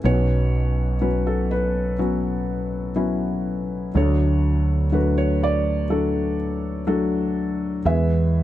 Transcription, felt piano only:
0.04 B1 B2 F#3 B3 C#4 F#4 B4 C#5
1.01 F#3 B3 C#4 B4
1.27 A4
1.51 B4
1.99 F#3 B3 C#4 B4
2.96 F#3 B3 C#4 E4
3.94 D2 D3 F#3 A3 D4 A4 C#5
3.99 F#4
4.92 F#3 A3 D4 F#4 B4
5.18 C#5
5.43 D5
5.90 F#3 A3 D4 A4
6.87 F#3 A3 D4 A4
7.85 E2 E3 G#3 B3 E4 G#4 B4 E5

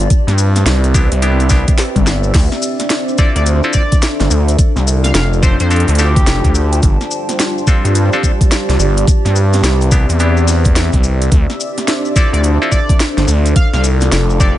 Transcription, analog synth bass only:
0.27 G2
0.66 C2
1.12 C2
1.96 G1
2.34 D2
3.36 D2
4.20 G1
4.30 D2
4.76 C2
5.14 F1
5.60 F2
5.88 D2
6.27 F1
6.44 D2
6.83 G1
7.85 G2
8.69 C2
8.79 G1
9.25 G2
9.63 C2
10.09 E2
10.93 C2
11.32 D2
12.33 D2
13.17 G1
13.28 D2
13.74 C2
14.12 F1

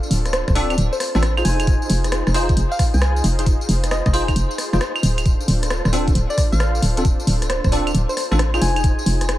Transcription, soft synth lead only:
0.33 C5
0.48 C5
0.55 D5
0.93 C5
1.00 C5
1.45 G#5
2.72 F5
2.94 G#5
3.91 D#5
4.06 D#5
6.30 D5
6.52 F5
7.50 C5
7.64 C5
7.72 D5
8.09 C5
8.17 C5
8.61 G#5

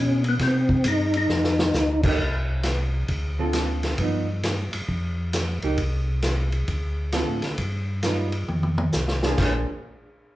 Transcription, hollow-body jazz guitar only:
2.04 A#3 D#4 G4
3.39 D3 C4 F4 A4
4.00 F3 B3 D#4
5.63 A#3 D#4 G4
7.13 D3 C4 F4 A4
8.04 G3 D#4 F4 B4
9.24 A#3 D4 G#4 C5
9.40 A#3 D4 G#4 C5

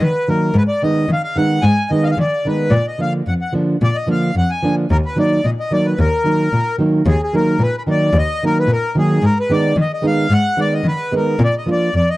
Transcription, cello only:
0.00 D#3
0.54 G#2
1.08 D#3
1.63 G#2
2.17 D#3
2.71 A#2
3.27 F2
3.82 A#2
4.35 F2
4.91 D#2
5.44 A#2
5.99 D#2
6.53 A#2
7.06 D#2
7.59 A#2
8.13 D#2
8.67 A#2
9.22 G#2
9.76 D#3
10.30 G#2
10.84 D#3
11.39 A#2
11.94 F2

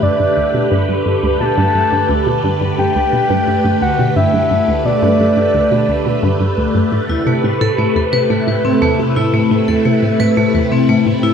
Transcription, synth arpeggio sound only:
0.03 G2
0.20 G2
0.37 D2
0.54 B2
0.71 G2
0.89 G2
1.06 G2
1.23 D2
1.40 B2
1.58 G2
1.75 G2
1.92 G2
2.09 D2
2.27 B2
2.44 G2
2.61 G2
2.78 G2
2.96 D2
3.13 B2
3.30 G2
3.47 G2
3.65 G2
3.82 D2
3.99 B2
4.16 G2
4.34 G2
4.51 G2
4.68 D2
4.85 B2
5.02 G2
5.20 G2
5.37 G2
5.54 D2
5.71 B2
5.89 D2
6.06 B2
6.23 G2
6.40 G2
6.58 D2
6.75 G2
6.92 A2
7.09 E2
7.26 C3
7.44 A2
7.61 A2
7.78 A2
7.96 E2
8.13 C3
8.30 A2
8.47 A2
8.65 A2
8.82 E2
8.99 C3
9.16 A2
9.34 A2
9.51 A2
9.68 E2
9.85 C3
10.03 A2
10.20 A2
10.37 A2
10.54 E2
10.72 C3
10.89 A2
11.06 A2
11.23 A2

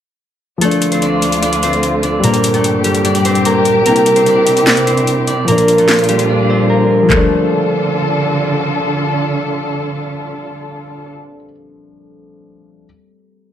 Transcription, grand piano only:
0.58 F3 A3
0.65 D4
2.20 A#2 G3
2.27 D4
3.82 G3 C4
3.89 E4
5.45 A#2 F3
5.52 D4
7.03 F3
7.10 A3
7.17 D4

